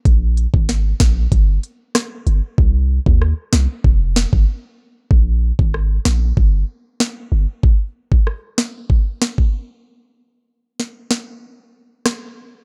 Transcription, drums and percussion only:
0.05 kick, closed hi-hat
0.37 closed hi-hat
0.54 kick
0.69 snare, closed hi-hat
1.00 kick, snare, closed hi-hat
1.32 kick, closed hi-hat
1.63 closed hi-hat
1.95 cross-stick, snare, closed hi-hat
2.27 closed hi-hat
2.58 kick
3.06 kick
3.22 cross-stick
3.53 snare
3.84 kick
4.16 snare
4.33 kick
5.11 kick
5.59 kick
5.74 cross-stick
6.05 snare
6.37 kick
7.00 snare
7.63 kick
8.12 kick
8.27 cross-stick
8.58 snare
8.90 kick
9.22 snare
9.38 kick
10.80 snare
11.11 snare
12.06 cross-stick, snare

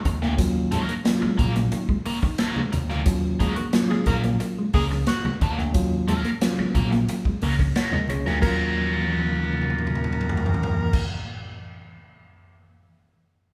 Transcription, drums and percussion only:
0.05 kick, closed hi-hat, low conga
0.22 snare
0.38 kick, closed hi-hat
0.72 closed hi-hat, muted conga, high conga
0.89 closed hi-hat, high conga
1.05 snare, closed hi-hat, high conga
1.39 kick, closed hi-hat, muted conga, high conga, low conga
1.56 snare, closed hi-hat
1.72 closed hi-hat, muted conga
1.89 kick
2.06 open hi-hat, muted conga
2.23 kick, snare, high conga
2.38 snare, closed hi-hat
2.56 high conga, low conga
2.73 closed hi-hat, muted conga, low conga
2.89 snare
3.06 kick, closed hi-hat
3.40 kick, closed hi-hat, muted conga, high conga
3.56 closed hi-hat, high conga
3.73 snare, closed hi-hat, muted conga, high conga
4.06 kick, closed hi-hat, high conga, low conga
4.24 snare, closed hi-hat
4.40 closed hi-hat
4.73 kick, open hi-hat, muted conga
4.91 snare, high conga
5.07 snare, closed hi-hat, muted conga
5.25 high conga, low conga
5.41 kick, closed hi-hat, low conga
5.58 snare
5.74 kick, closed hi-hat
6.08 closed hi-hat, high conga
6.24 closed hi-hat, high conga
6.41 snare, closed hi-hat, high conga
6.75 kick, closed hi-hat, muted conga, high conga, low conga
6.92 snare, closed hi-hat
7.08 closed hi-hat, muted conga
7.25 kick
7.42 open hi-hat, muted conga
7.59 kick, snare, high conga
7.75 snare, closed hi-hat, muted conga
7.92 high conga, low conga
8.08 closed hi-hat, low conga
8.26 snare
8.41 kick, crash, high conga
8.76 high tom
8.84 high tom
8.92 high tom
9.01 high tom
9.10 high tom
9.18 high tom
9.27 mid tom
9.36 mid tom
9.44 mid tom
9.53 mid tom
9.62 mid tom
9.70 mid tom
9.78 mid tom
9.87 mid tom
9.95 mid tom
10.04 mid tom
10.13 mid tom
10.21 mid tom
10.29 floor tom
10.37 floor tom
10.46 floor tom
10.54 floor tom
10.63 floor tom
10.93 kick, crash

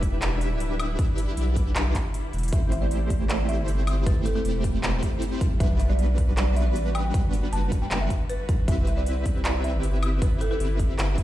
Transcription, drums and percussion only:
0.03 kick, closed hi-hat
0.22 clap, closed hi-hat
0.41 closed hi-hat
0.60 closed hi-hat
0.80 closed hi-hat, high woodblock
0.99 kick, closed hi-hat
1.18 closed hi-hat
1.37 closed hi-hat
1.56 kick, closed hi-hat
1.76 clap, closed hi-hat
1.95 kick, clap, closed hi-hat
2.14 closed hi-hat
2.33 closed hi-hat
2.38 closed hi-hat
2.43 closed hi-hat
2.48 closed hi-hat
2.53 kick, closed hi-hat
2.72 closed hi-hat
2.91 closed hi-hat
3.10 kick, closed hi-hat
3.29 clap, closed hi-hat
3.49 closed hi-hat
3.68 closed hi-hat
3.87 closed hi-hat, high woodblock
4.06 kick, closed hi-hat
4.26 closed hi-hat
4.45 closed hi-hat
4.64 kick, closed hi-hat
4.83 clap, closed hi-hat
5.03 kick, closed hi-hat
5.22 closed hi-hat
5.41 kick, closed hi-hat
5.60 kick, closed hi-hat
5.80 closed hi-hat
5.99 closed hi-hat
6.18 kick, closed hi-hat
6.37 clap, closed hi-hat
6.56 closed hi-hat
6.76 closed hi-hat
6.95 closed hi-hat, high woodblock
7.14 kick, closed hi-hat
7.33 closed hi-hat
7.53 closed hi-hat
7.72 kick, closed hi-hat
7.91 clap, closed hi-hat
8.10 kick, closed hi-hat
8.29 closed hi-hat
8.49 kick, closed hi-hat
8.68 kick, closed hi-hat
8.87 closed hi-hat
9.06 closed hi-hat
9.26 kick, closed hi-hat
9.45 clap, closed hi-hat
9.64 closed hi-hat
9.83 closed hi-hat
10.03 closed hi-hat, high woodblock
10.22 kick, closed hi-hat
10.41 closed hi-hat
10.60 closed hi-hat
10.79 kick, closed hi-hat
10.99 clap, closed hi-hat
11.18 kick, closed hi-hat

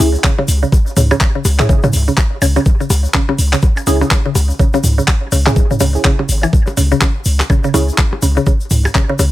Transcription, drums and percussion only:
0.00 open hi-hat, percussion blips, shaker
0.15 shaker
0.24 kick, clap, shaker
0.38 percussion blips
0.48 open hi-hat, shaker
0.63 shaker
0.72 kick, percussion blips, shaker
0.87 shaker
0.97 mid tom, open hi-hat, shaker
1.11 percussion blips, shaker
1.21 kick, clap, shaker
1.45 open hi-hat, percussion blips, shaker
1.59 clap, mid tom, shaker
1.69 kick, shaker
1.83 mid tom, percussion blips, shaker
1.93 open hi-hat, shaker
2.08 shaker
2.17 kick, clap, percussion blips, shaker
2.42 open hi-hat, percussion blips, shaker
2.56 percussion blips, shaker
2.66 kick, shaker
2.81 shaker
2.90 open hi-hat, percussion blips, shaker
3.05 shaker
3.14 kick, clap, shaker
3.29 percussion blips
3.38 open hi-hat, shaker
3.53 clap, shaker
3.62 kick, percussion blips, shaker
3.77 percussion blips, shaker
3.87 open hi-hat, shaker
4.01 percussion blips, shaker
4.11 kick, clap, shaker
4.35 open hi-hat, percussion blips, shaker
4.50 shaker
4.59 kick, shaker
4.74 percussion blips, shaker
4.84 mid tom, open hi-hat, shaker
4.98 shaker
5.08 kick, clap, percussion blips, shaker
5.32 open hi-hat, shaker
5.46 clap, mid tom, percussion blips, shaker
5.56 kick, shaker
5.71 mid tom, shaker
5.80 open hi-hat, percussion blips, shaker
5.95 shaker
6.04 kick, clap, shaker
6.19 percussion blips
6.29 open hi-hat, shaker
6.43 percussion blips, shaker
6.53 kick, shaker
6.67 percussion blips, shaker
6.77 open hi-hat, shaker
6.91 shaker
7.01 kick, clap, percussion blips, shaker
7.25 open hi-hat, shaker
7.39 clap, percussion blips, shaker
7.50 kick, percussion blips, shaker
7.64 shaker
7.74 open hi-hat, percussion blips, shaker
7.89 shaker
7.98 kick, clap, shaker
8.13 percussion blips
8.22 open hi-hat, shaker
8.37 shaker
8.46 kick, percussion blips, shaker
8.60 shaker
8.71 mid tom, open hi-hat, shaker
8.85 percussion blips, shaker
8.95 kick, clap, shaker
9.19 open hi-hat, percussion blips, shaker

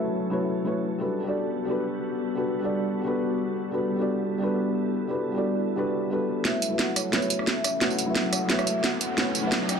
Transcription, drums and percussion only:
6.45 snare, closed hi-hat
6.62 closed hi-hat, tambourine
6.79 snare, closed hi-hat
6.96 cross-stick, closed hi-hat, tambourine
7.13 snare, closed hi-hat
7.22 tambourine
7.30 closed hi-hat, tambourine
7.39 cross-stick
7.47 snare, closed hi-hat
7.64 cross-stick, closed hi-hat, tambourine
7.81 snare, closed hi-hat
7.90 tambourine
7.99 closed hi-hat, tambourine
8.16 snare, closed hi-hat
8.33 cross-stick, closed hi-hat, tambourine
8.50 snare, closed hi-hat
8.59 cross-stick, tambourine
8.67 closed hi-hat, tambourine
8.84 snare, closed hi-hat
9.01 closed hi-hat, tambourine
9.18 snare, closed hi-hat
9.35 closed hi-hat, tambourine
9.52 snare, closed hi-hat
9.69 cross-stick, closed hi-hat, tambourine

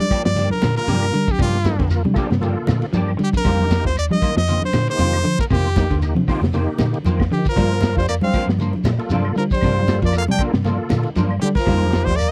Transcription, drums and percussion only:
0.11 kick, ride bell, claves, shekere
0.25 snare, shekere
0.35 snare, ride bell, low conga, shekere
0.50 high conga
0.62 snare, ride bell, high conga, claves, shekere
0.76 snare, ride bell, shekere
0.88 ride bell, high conga, shekere
1.03 claves
1.14 ride bell, shekere
1.28 kick, high conga, shekere
1.39 kick, ride bell, low conga, claves, shekere
1.55 snare
1.65 snare, ride bell, high conga, shekere
1.79 kick, snare, ride bell, shekere
1.90 snare, ride bell, claves, shekere
2.05 high conga
2.16 kick, snare, ride bell, claves, shekere
2.31 snare, low conga, shekere
2.42 ride bell, low conga, shekere
2.67 snare, ride bell, high conga, claves, shekere
2.82 snare, ride bell, shekere
2.93 ride bell, high conga, shekere
3.08 claves
3.19 ride bell, shekere
3.33 kick, ride bell, high conga, shekere
3.45 kick, snare, ride bell, low conga, claves, shekere
3.60 high conga
3.71 snare, ride bell, high conga, shekere
3.85 kick, shekere
3.97 ride bell, claves, shekere
4.11 high conga
4.22 kick, ride bell, claves, shekere
4.37 snare, shekere
4.47 ride bell, low conga, shekere
4.62 high conga
4.73 snare, ride bell, high conga, claves, shekere
4.88 ride bell, shekere
4.99 ride bell, high conga, shekere
5.13 claves
5.25 ride bell, shekere
5.39 kick, snare, shekere
5.50 kick, ride bell, low conga, claves, shekere
5.66 snare
5.76 kick, snare, ride bell, high conga, shekere
5.90 kick, snare, ride bell, shekere
6.02 ride bell, claves, shekere
6.16 high conga
6.28 kick, snare, open hi-hat, claves, shekere
6.42 snare, low conga, shekere
6.53 snare, ride bell, low conga, shekere
6.78 snare, ride bell, high conga, claves, shekere
6.94 ride bell, shekere
7.04 ride bell, high conga, shekere
7.20 kick, snare, claves
7.31 ride bell, shekere
7.45 kick, ride bell, shekere
7.56 kick, snare, ride bell, low conga, claves, shekere
7.72 snare
7.81 snare, ride bell, high conga, shekere
7.97 kick, snare, shekere
8.08 snare, ride bell, claves, shekere
8.21 high conga
8.33 kick, snare, ride bell, claves, shekere
8.49 snare, shekere
8.59 ride bell, low conga, shekere
8.73 high conga
8.85 snare, ride bell, high conga, claves, shekere
8.99 ride bell, shekere
9.10 ride bell, high conga, shekere
9.25 claves
9.35 ride bell, shekere
9.51 kick, high conga, shekere
9.61 kick, ride bell, low conga, claves, shekere
9.77 high conga
9.88 snare, ride bell, high conga, shekere
10.02 kick, snare, ride bell, shekere
10.13 ride bell, claves, shekere
10.28 high conga
10.39 kick, ride bell, claves, shekere
10.54 snare, shekere
10.64 ride bell, low conga, shekere
10.89 snare, ride bell, high conga, claves, shekere
11.03 ride bell, shekere
11.15 ride bell, high conga, shekere
11.31 claves
11.41 snare, ride bell, shekere
11.55 kick, ride bell, shekere
11.65 kick, snare, ride bell, low conga, claves
11.70 shekere
11.82 high conga
11.92 snare, ride bell, high conga, shekere
12.07 kick, shekere
12.18 ride bell, claves, shekere

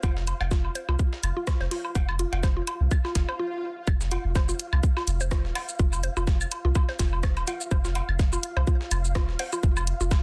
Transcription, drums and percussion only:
0.03 kick, cowbell, low woodblock, shaker
0.17 snare
0.27 closed hi-hat, low woodblock, shaker
0.41 cowbell, high woodblock
0.51 kick, snare, shaker
0.65 low woodblock
0.75 closed hi-hat, shaker
0.89 low woodblock
0.99 kick, shaker
1.13 snare
1.23 closed hi-hat, high woodblock, low woodblock, shaker
1.47 kick, cross-stick, snare, low woodblock, shaker
1.61 snare
1.71 snare, closed hi-hat, open hi-hat
1.85 low woodblock
1.95 kick, cowbell, shaker
2.09 high woodblock, low woodblock
2.19 closed hi-hat, shaker
2.33 closed hi-hat, cowbell
2.43 kick, snare, low woodblock, shaker
2.67 closed hi-hat, low woodblock, shaker
2.91 kick, high woodblock, shaker
3.05 snare, low woodblock
3.15 kick, snare, closed hi-hat, shaker
3.29 low woodblock
3.87 kick, high woodblock, shaker
4.01 snare, shaker
4.11 closed hi-hat, cowbell, low woodblock, shaker
4.35 kick, snare, low woodblock, shaker
4.49 shaker
4.59 closed hi-hat, shaker
4.73 high woodblock, low woodblock
4.83 kick, shaker
4.97 snare, low woodblock
5.07 closed hi-hat, shaker
5.21 shaker
5.31 kick, cross-stick, snare, low woodblock, shaker
5.45 snare
5.55 snare, closed hi-hat, open hi-hat, cowbell, high woodblock, low woodblock
5.69 shaker
5.79 kick, shaker
5.93 low woodblock, shaker
6.03 closed hi-hat, shaker
6.17 low woodblock, shaker
6.27 kick, snare, shaker
6.41 high woodblock, shaker
6.51 closed hi-hat, low woodblock, shaker
6.75 kick, low woodblock, shaker
6.89 snare
6.99 kick, snare, closed hi-hat, shaker
7.13 low woodblock
7.23 kick, cross-stick, snare, high woodblock, shaker
7.37 closed hi-hat, low woodblock
7.47 closed hi-hat, cowbell, shaker
7.61 shaker
7.71 kick, low woodblock, shaker
7.85 snare, shaker
7.95 closed hi-hat, cowbell, low woodblock, shaker
8.09 high woodblock
8.19 kick, snare, shaker
8.33 low woodblock, shaker
8.43 closed hi-hat, shaker
8.57 low woodblock
8.67 kick, shaker
8.81 snare
8.91 closed hi-hat, high woodblock, low woodblock, shaker
9.05 shaker
9.15 kick, cross-stick, snare, low woodblock, shaker
9.29 snare
9.39 snare, closed hi-hat, open hi-hat, cowbell
9.53 low woodblock, shaker
9.63 kick, shaker
9.77 high woodblock, low woodblock, shaker
9.87 closed hi-hat, shaker
10.01 shaker
10.11 kick, snare, low woodblock, shaker

